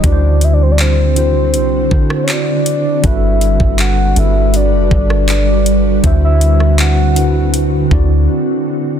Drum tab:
HH |x-x-x-x-x---x-x-|x-x-x-x-x---x-x-|x-x-x-x-x-------|
CP |----x-------x---|----x-------x---|----x-----------|
SD |-----------r----|-----------r----|---r------------|
BD |o---------o-----|o--o------o-----|o---------o-----|